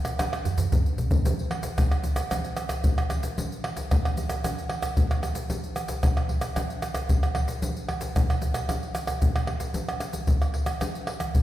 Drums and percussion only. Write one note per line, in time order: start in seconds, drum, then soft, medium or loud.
0.05 pandeiro medium
0.05 tamborim medium
0.05 shaker medium
0.05 surdo soft
0.19 pandeiro medium
0.19 tamborim medium
0.19 shaker medium
0.19 surdo medium
0.33 pandeiro soft
0.33 tamborim medium
0.33 shaker soft
0.45 surdo medium
0.45 pandeiro medium
0.45 shaker medium
0.58 surdo medium
0.58 pandeiro medium
0.58 shaker medium
0.58 surdo soft
0.72 surdo medium
0.72 pandeiro medium
0.72 shaker medium
0.72 surdo medium
0.86 pandeiro soft
0.86 shaker soft
0.98 pandeiro medium
0.98 shaker medium
0.98 surdo medium
1.11 pandeiro medium
1.11 shaker medium
1.11 surdo medium
1.25 pandeiro medium
1.25 shaker medium
1.25 surdo medium
1.39 pandeiro soft
1.39 shaker soft
1.51 pandeiro medium
1.51 tamborim medium
1.63 pandeiro medium
1.63 shaker medium
1.63 surdo soft
1.78 pandeiro medium
1.78 tamborim medium
1.78 shaker medium
1.78 surdo loud
1.92 pandeiro soft
1.92 tamborim medium
1.92 shaker soft
2.04 pandeiro medium
2.04 shaker medium
2.16 pandeiro medium
2.16 tamborim medium
2.16 shaker medium
2.16 surdo soft
2.31 pandeiro medium
2.31 tamborim medium
2.31 shaker medium
2.31 surdo medium
2.44 pandeiro soft
2.44 shaker soft
2.57 pandeiro medium
2.57 tamborim medium
2.57 shaker medium
2.69 pandeiro medium
2.69 tamborim medium
2.69 shaker medium
2.69 surdo soft
2.84 pandeiro medium
2.84 shaker medium
2.84 surdo loud
2.98 pandeiro soft
2.98 tamborim medium
2.98 shaker soft
3.10 pandeiro medium
3.10 tamborim medium
3.10 shaker medium
3.23 pandeiro medium
3.23 shaker medium
3.23 surdo soft
3.38 pandeiro medium
3.38 shaker medium
3.38 surdo medium
3.52 pandeiro soft
3.52 shaker soft
3.64 pandeiro medium
3.64 tamborim medium
3.77 pandeiro medium
3.77 shaker medium
3.77 surdo soft
3.91 pandeiro medium
3.91 tamborim medium
3.91 shaker medium
3.91 surdo loud
4.05 pandeiro soft
4.05 tamborim medium
4.05 shaker soft
4.17 pandeiro medium
4.17 shaker medium
4.29 pandeiro medium
4.29 tamborim medium
4.29 shaker medium
4.29 surdo soft
4.44 pandeiro medium
4.44 tamborim medium
4.44 shaker medium
4.44 surdo medium
4.58 pandeiro soft
4.58 shaker soft
4.70 pandeiro medium
4.70 tamborim medium
4.82 pandeiro medium
4.82 tamborim medium
4.82 shaker medium
4.82 surdo soft
4.97 pandeiro medium
4.97 shaker medium
4.97 surdo loud
5.11 pandeiro soft
5.11 tamborim medium
5.11 shaker soft
5.23 pandeiro medium
5.23 tamborim medium
5.23 shaker medium
5.35 pandeiro medium
5.35 shaker medium
5.35 surdo soft
5.50 pandeiro medium
5.50 shaker medium
5.50 surdo medium
5.64 pandeiro soft
5.64 shaker soft
5.76 pandeiro medium
5.76 tamborim medium
5.76 shaker medium
5.88 pandeiro medium
5.88 shaker medium
5.88 surdo soft
6.03 pandeiro medium
6.03 tamborim medium
6.03 shaker medium
6.03 surdo loud
6.17 pandeiro soft
6.17 tamborim medium
6.17 shaker soft
6.29 pandeiro medium
6.41 pandeiro medium
6.41 tamborim medium
6.41 shaker medium
6.41 surdo soft
6.56 pandeiro medium
6.56 tamborim medium
6.56 shaker medium
6.56 surdo medium
6.70 pandeiro soft
6.70 shaker soft
6.82 pandeiro medium
6.82 tamborim medium
6.82 shaker medium
6.95 pandeiro medium
6.95 tamborim medium
6.95 shaker medium
6.95 surdo soft
7.09 pandeiro medium
7.09 shaker medium
7.09 surdo medium
7.23 pandeiro soft
7.23 tamborim medium
7.23 shaker soft
7.35 pandeiro medium
7.35 tamborim medium
7.48 pandeiro medium
7.48 shaker medium
7.48 surdo soft
7.62 pandeiro medium
7.62 shaker medium
7.62 surdo medium
7.76 pandeiro soft
7.76 shaker soft
7.89 pandeiro medium
7.89 tamborim medium
7.89 surdo soft
8.01 pandeiro medium
8.01 shaker medium
8.01 surdo soft
8.16 pandeiro medium
8.16 tamborim medium
8.16 shaker medium
8.16 surdo loud
8.30 pandeiro soft
8.30 tamborim medium
8.30 shaker soft
8.42 pandeiro medium
8.42 shaker medium
8.54 pandeiro medium
8.54 tamborim medium
8.54 shaker medium
8.54 surdo soft
8.69 pandeiro medium
8.69 tamborim medium
8.69 shaker medium
8.69 surdo medium
8.83 pandeiro soft
8.83 shaker soft
8.95 pandeiro medium
8.95 tamborim medium
8.95 shaker medium
9.07 pandeiro medium
9.07 tamborim medium
9.07 shaker medium
9.07 surdo soft
9.22 pandeiro medium
9.22 shaker medium
9.22 surdo medium
9.36 pandeiro soft
9.36 tamborim medium
9.36 shaker soft
9.47 pandeiro medium
9.47 tamborim medium
9.60 pandeiro medium
9.60 shaker medium
9.60 surdo soft
9.74 pandeiro medium
9.74 shaker medium
9.74 surdo medium
9.89 pandeiro soft
9.89 tamborim medium
9.89 shaker soft
10.00 pandeiro medium
10.00 tamborim medium
10.00 shaker medium
10.13 pandeiro medium
10.13 shaker medium
10.13 surdo soft
10.27 pandeiro medium
10.27 shaker medium
10.27 surdo medium
10.42 pandeiro soft
10.42 tamborim medium
10.42 shaker soft
10.54 pandeiro medium
10.66 pandeiro medium
10.66 tamborim medium
10.66 shaker medium
10.66 surdo soft
10.81 pandeiro medium
10.81 tamborim medium
10.81 shaker medium
10.81 surdo medium
10.95 pandeiro soft
10.95 shaker soft
11.07 pandeiro medium
11.07 tamborim medium
11.20 pandeiro medium
11.20 tamborim medium
11.20 shaker medium
11.20 surdo soft
11.35 pandeiro medium
11.35 shaker medium
11.35 surdo medium